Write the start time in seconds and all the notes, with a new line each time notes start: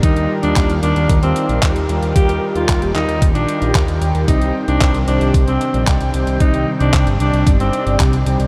Already playing: G4 A#4
0.03 D#2 D#3 G3 D#4 F4 A#4 F5, kick, closed hi-hat
0.16 D#2, closed hi-hat
0.43 D#2 G3 D4 D#4 F4 A#4, closed hi-hat
0.56 D#2, kick, clap, closed hi-hat
0.70 D#2, closed hi-hat
0.83 D#2 G3 D4 D#4 F4 A#4, closed hi-hat
0.96 D#2, closed hi-hat
1.09 D#2, kick, closed hi-hat
1.23 D#2 G3 C4 D#4 F4 A#4, closed hi-hat
1.36 closed hi-hat
1.49 A#1 G3 D#4 F4 C5, closed hi-hat
1.63 D#2, kick, clap, closed hi-hat
1.76 D#2, closed hi-hat
1.89 D#2 G3 D#4 F4 A#4, closed hi-hat
2.02 D#2, closed hi-hat
2.15 D#2 G3 D#4 F4 G4 A#4 G5, kick, closed hi-hat
2.29 D#2, closed hi-hat
2.55 D#2 G3 D#4 F4 A#4, closed hi-hat
2.69 D#2, kick, clap, closed hi-hat
2.82 D#1, closed hi-hat
2.95 D#2 G3 D#4 F4 A#4, clap, closed hi-hat
3.08 D#2, closed hi-hat
3.22 D#1, kick, closed hi-hat
3.35 A#1 G3 D4 D#4 F4 A#4, closed hi-hat
3.48 G3 D#4 F4 A#4, closed hi-hat
3.62 A#1, closed hi-hat
3.75 D#2, kick, clap, closed hi-hat
3.88 D#2 G3 D#4 F4 A#4, closed hi-hat
4.01 D#2, closed hi-hat
4.15 D#2, closed hi-hat
4.28 C2 C3 G3 C4 D#4 C5, kick, closed hi-hat
4.41 C2, closed hi-hat
4.68 C2 C3 G3 C4 D4 D#4 C5, closed hi-hat
4.81 C2, kick, clap, closed hi-hat
4.94 C2, closed hi-hat
5.07 C2 C3 G3 C4 D4 D#4 C5, closed hi-hat
5.21 C2, closed hi-hat
5.34 C2, kick, closed hi-hat
5.47 C2 C3 G3 C4 D#4 C5, closed hi-hat
5.61 closed hi-hat
5.74 A#1 C3 G3 C4 D#4 D5, closed hi-hat
5.87 C2, kick, clap, closed hi-hat
6.01 C2, closed hi-hat
6.14 C2 C3 G3 C4 D#4 C5, closed hi-hat
6.27 C2, closed hi-hat
6.40 C2 C3 G3 C4 D#4 C5 D5, kick, closed hi-hat
6.54 C2, closed hi-hat
6.80 C2 C3 G3 C4 D4 D#4 C5, closed hi-hat
6.93 C2, kick, clap, closed hi-hat
7.07 G1, closed hi-hat
7.20 C2 C3 G3 C4 D4 D#4 C5, closed hi-hat
7.33 C2, closed hi-hat
7.47 G1, kick, closed hi-hat
7.60 G1 C3 G3 C4 D#4 C5, closed hi-hat
7.73 closed hi-hat
7.86 G1 C3 G3 C4 D#4 D5, closed hi-hat
8.00 C2, kick, clap, closed hi-hat
8.13 C2, closed hi-hat
8.26 C2 G3 C4 D#4 C5, closed hi-hat
8.40 C2, closed hi-hat